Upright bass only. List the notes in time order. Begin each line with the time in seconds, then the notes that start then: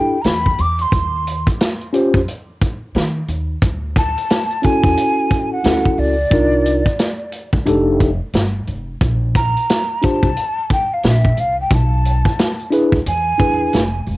0.25 E2
0.59 E2
0.92 D#2
2.14 F2
2.95 D#3
3.28 D#2
3.62 D2
4.83 E2
5.64 D2
5.98 C#2
6.31 C2
7.53 D2
7.66 F1
8.34 G1
8.68 F1
9.01 A#1
10.23 C2
11.04 A#1
11.38 C2
11.71 B1
12.93 D2
13.06 E2
13.40 E2
13.74 F1
14.07 E1